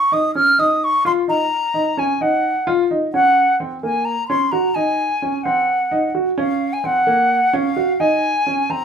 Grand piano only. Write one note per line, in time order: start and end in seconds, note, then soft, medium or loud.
0.12 0.27 D#4 medium
0.35 0.50 C#4 medium
0.59 0.89 D#4 medium
1.05 1.20 F4 medium
1.28 1.43 D#4 medium
1.74 1.89 D#4 medium
1.97 2.12 C#4 medium
2.21 2.51 D#4 medium
2.67 2.82 F4 loud
2.91 3.05 D#4 medium
3.14 3.44 C#4 medium
3.60 3.75 C4 medium
3.83 4.13 A#3 medium
4.30 4.44 C#4 medium
4.53 4.67 F#4 medium
4.76 5.06 D#4 medium
5.22 5.37 C#4 medium
5.45 5.75 C4 medium
5.91 6.06 D#4 medium
6.15 6.30 F#4 medium
6.38 6.68 C#4 medium
6.84 6.99 C4 medium
7.07 7.37 A#3 medium
7.53 7.68 C#4 loud
7.76 7.92 F#4 medium
8.00 8.30 D#4 medium
8.47 8.62 C#4 medium
8.70 8.85 C4 medium